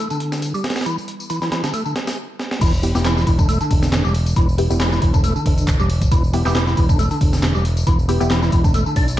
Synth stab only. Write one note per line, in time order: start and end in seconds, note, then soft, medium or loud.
2.83 2.93 B3 medium
2.83 2.93 E4 medium
2.83 2.93 G4 medium
2.95 3.05 B3 loud
2.95 3.05 E4 medium
2.95 3.05 G4 loud
4.58 4.68 B3 medium
4.58 4.68 E4 medium
4.58 4.68 G4 medium
4.71 4.80 B3 loud
4.71 4.80 E4 medium
4.71 4.80 G4 loud
6.34 6.44 B3 medium
6.34 6.44 E4 medium
6.34 6.44 G4 medium
6.46 6.55 B3 loud
6.46 6.55 E4 medium
6.46 6.55 G4 loud
8.09 8.19 B3 medium
8.09 8.19 E4 medium
8.09 8.19 G4 medium
8.20 8.30 B3 loud
8.20 8.30 E4 medium
8.20 8.30 G4 loud